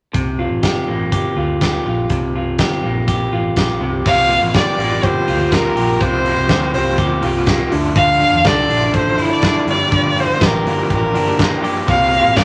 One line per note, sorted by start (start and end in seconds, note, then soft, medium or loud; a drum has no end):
0.13 0.46 C2 medium
0.13 2.09 C3 medium
0.13 kick medium
0.13 closed hi-hat medium
0.39 1.36 F4 medium
0.51 0.61 A1 medium
0.63 0.84 G1 medium
0.63 1.12 G4 medium
0.63 kick medium
0.63 snare loud
0.63 closed hi-hat medium
0.88 1.09 A1 medium
0.88 2.83 A#3 medium
1.12 1.33 G1 medium
1.12 1.61 G4 medium
1.12 kick medium
1.12 closed hi-hat medium
1.36 1.78 D2 medium
1.36 1.86 F4 soft
1.61 2.59 G4 medium
1.61 kick medium
1.61 snare medium
1.61 closed hi-hat medium
1.85 2.06 A#1 medium
1.85 2.35 F4 medium
2.10 2.60 C2 medium
2.10 3.80 C3 medium
2.10 kick medium
2.10 closed hi-hat medium
2.35 3.32 F4 medium
2.59 2.80 G1 medium
2.59 3.07 G4 medium
2.59 kick medium
2.59 snare loud
2.59 closed hi-hat medium
2.84 3.25 A#1 medium
2.84 4.08 A#3 medium
3.08 3.56 G4 medium
3.08 kick medium
3.08 closed hi-hat medium
3.32 3.53 A1 medium
3.32 4.57 F4 medium
3.56 3.77 A#1 medium
3.56 4.54 G4 medium
3.56 kick medium
3.56 snare medium
3.56 closed hi-hat medium
3.81 4.02 C2 medium
3.81 4.04 C3 medium
4.05 4.37 C2 loud
4.05 4.79 C3 medium
4.05 6.00 C3 medium
4.05 4.77 F3 medium
4.05 4.78 A#3 medium
4.05 4.80 F4 medium
4.05 4.80 G4 medium
4.05 4.52 F5 loud
4.05 kick loud
4.05 crash medium
4.29 4.77 A#3 medium
4.29 open hi-hat medium
4.42 4.53 A1 medium
4.54 4.75 G1 medium
4.54 5.02 G4 medium
4.54 5.06 D5 medium
4.54 kick loud
4.54 snare loud
4.54 closed hi-hat medium
4.77 5.03 A1 medium
4.77 5.25 F3 medium
4.77 5.50 A#3 medium
4.77 5.26 A#3 medium
4.77 5.28 F4 medium
4.77 5.28 G4 medium
4.77 open hi-hat medium
5.03 5.29 G1 medium
5.03 5.75 G4 medium
5.03 5.55 C5 medium
5.03 kick loud
5.03 closed hi-hat medium
5.25 5.69 D2 medium
5.25 5.39 F3 medium
5.25 5.40 A#3 medium
5.25 7.22 F4 medium
5.25 5.40 F4 medium
5.25 5.38 G4 medium
5.25 open hi-hat medium
5.39 5.51 A#3 soft
5.39 5.52 F4 soft
5.39 5.52 G4 soft
5.51 5.74 F3 medium
5.51 6.24 A#3 medium
5.51 5.75 A#3 medium
5.51 5.77 F4 medium
5.51 5.77 G4 medium
5.51 6.03 A#4 medium
5.51 kick loud
5.51 snare medium
5.51 closed hi-hat medium
5.76 5.97 A#1 medium
5.76 6.00 F3 medium
5.76 6.01 A#3 medium
5.76 6.01 F4 medium
5.76 6.48 G4 medium
5.76 6.02 G4 medium
5.76 open hi-hat medium
6.00 6.32 C2 medium
6.00 6.74 C3 medium
6.00 7.71 C3 medium
6.00 6.73 F3 medium
6.00 6.73 A#3 medium
6.00 6.76 F4 medium
6.00 6.75 G4 medium
6.00 6.73 C5 loud
6.00 kick loud
6.00 closed hi-hat medium
6.25 6.72 A#3 medium
6.25 open hi-hat medium
6.37 6.48 C2 medium
6.49 6.70 D2 medium
6.49 6.97 G4 medium
6.49 kick loud
6.49 snare loud
6.49 closed hi-hat medium
6.74 6.95 C2 medium
6.74 7.21 F3 medium
6.74 7.45 A#3 medium
6.74 7.22 A#3 medium
6.74 7.24 F4 medium
6.74 7.23 G4 medium
6.74 7.20 C5 medium
6.74 open hi-hat medium
6.98 7.19 D2 medium
6.98 7.77 G4 medium
6.98 kick medium
6.98 closed hi-hat medium
7.21 7.64 C2 medium
7.21 7.34 F3 medium
7.21 7.35 A#3 medium
7.21 9.18 F4 medium
7.21 7.34 F4 medium
7.21 7.33 G4 medium
7.21 open hi-hat medium
7.34 7.46 A#3 soft
7.34 7.47 F4 soft
7.34 7.47 G4 medium
7.46 7.70 F3 medium
7.46 7.76 A#3 medium
7.46 7.72 A#3 medium
7.46 7.72 F4 medium
7.46 7.73 G4 medium
7.46 kick loud
7.46 snare medium
7.46 closed hi-hat medium
7.71 8.24 D2 medium
7.71 7.95 D3 medium
7.71 7.94 F3 medium
7.71 7.95 D4 medium
7.71 7.97 E4 medium
7.71 7.97 A4 medium
7.71 open hi-hat medium
7.95 8.73 D3 medium
7.95 11.45 D3 medium
7.95 8.68 F3 medium
7.95 8.69 D4 medium
7.95 8.70 A4 medium
7.95 8.47 F5 loud
7.95 kick loud
7.95 closed hi-hat medium
8.20 8.68 D4 medium
8.20 open hi-hat medium
8.32 8.43 E2 medium
8.44 8.66 C2 medium
8.44 8.92 A4 medium
8.44 8.95 D5 loud
8.44 kick loud
8.44 snare loud
8.44 closed hi-hat medium
8.68 8.90 A#1 medium
8.68 9.17 F3 medium
8.68 9.42 D4 medium
8.68 9.19 D4 medium
8.68 9.19 E4 medium
8.68 9.19 A4 medium
8.68 open hi-hat medium
8.93 9.14 A1 medium
8.93 9.72 A4 medium
8.93 9.29 C5 medium
8.93 kick medium
8.93 closed hi-hat medium
9.17 9.59 G1 medium
9.17 9.30 F3 soft
9.17 9.31 D4 medium
9.17 9.72 E4 medium
9.17 9.30 E4 medium
9.17 9.29 A4 medium
9.17 open hi-hat medium
9.30 9.42 D4 soft
9.30 9.43 E4 soft
9.30 9.43 A4 soft
9.30 9.66 D5 medium
9.42 9.66 F3 medium
9.42 10.16 D4 medium
9.42 9.68 D4 medium
9.42 9.68 E4 medium
9.42 9.69 A4 medium
9.42 kick loud
9.42 snare loud
9.42 closed hi-hat medium
9.66 9.88 G1 loud
9.66 9.91 G2 medium
9.66 9.91 F3 medium
9.66 9.92 A#3 medium
9.66 9.92 D4 medium
9.66 9.92 G4 medium
9.66 10.21 D5 medium
9.66 open hi-hat medium
9.91 10.23 G1 medium
9.91 10.65 G2 medium
9.91 11.88 G2 medium
9.91 10.65 D3 medium
9.91 10.64 F3 medium
9.91 10.66 A#3 medium
9.91 10.66 D4 medium
9.91 10.68 G4 medium
9.91 kick medium
9.91 closed hi-hat medium
10.17 10.65 A#3 medium
10.17 10.47 C5 medium
10.17 open hi-hat medium
10.29 10.39 G1 medium
10.41 10.62 A1 loud
10.41 10.90 G4 medium
10.41 kick loud
10.41 snare loud
10.41 closed hi-hat medium
10.46 10.92 A#4 medium
10.65 10.86 G1 medium
10.65 11.13 F3 medium
10.65 11.39 A#3 medium
10.65 11.15 A#3 medium
10.65 11.15 D4 medium
10.65 11.17 G4 medium
10.65 open hi-hat medium
10.90 11.11 A1 medium
10.90 11.62 G4 medium
10.90 11.61 A#4 medium
10.90 kick medium
10.90 closed hi-hat medium
11.14 11.56 G1 medium
11.14 11.26 F3 medium
11.14 11.26 A#3 medium
11.14 11.93 D4 medium
11.14 11.25 D4 medium
11.14 11.24 G4 medium
11.14 open hi-hat medium
11.25 11.36 F3 soft
11.25 11.38 A#3 soft
11.25 11.38 D4 soft
11.25 11.38 G4 medium
11.38 11.59 F3 soft
11.38 11.61 A#3 medium
11.38 12.11 A#3 medium
11.38 11.62 D4 medium
11.38 11.63 G4 medium
11.38 kick loud
11.38 snare medium
11.38 closed hi-hat medium
11.61 11.86 F3 medium
11.61 11.87 A#3 medium
11.61 11.88 D4 medium
11.61 12.36 G4 medium
11.61 11.88 G4 medium
11.61 open hi-hat medium
11.86 12.19 C2 medium
11.86 12.44 C3 medium
11.86 12.44 G3 medium
11.86 12.44 A#3 medium
11.86 12.44 F4 medium
11.86 12.44 G4 medium
11.86 12.38 F5 loud
11.86 kick loud
11.86 closed hi-hat medium
12.12 12.44 A#3 medium
12.12 open hi-hat medium
12.24 12.37 A1 medium
12.36 12.44 G1 medium
12.36 12.44 G4 medium
12.36 12.44 D5 loud
12.36 kick loud
12.36 snare loud
12.36 closed hi-hat medium